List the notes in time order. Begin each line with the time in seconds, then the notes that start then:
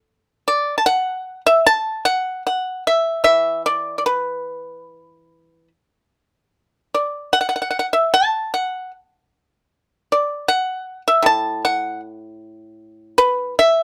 0.48 D5
0.78 A5
0.86 F#5
1.46 E5
1.67 A5
2.05 F#5
2.47 F#5
2.87 E5
3.24 E3 E5
3.66 D5
3.98 D5
4.06 B4
6.94 D5
7.33 F#5
7.41 F#5
7.49 F#5
7.56 F#5
7.62 F#5
7.71 F#5
7.79 F#5
7.93 E5
8.14 A5
8.54 F#5
10.12 D5
10.48 F#5
11.08 E5
11.22 A2 A5
11.65 F#5
13.18 B4
13.59 E5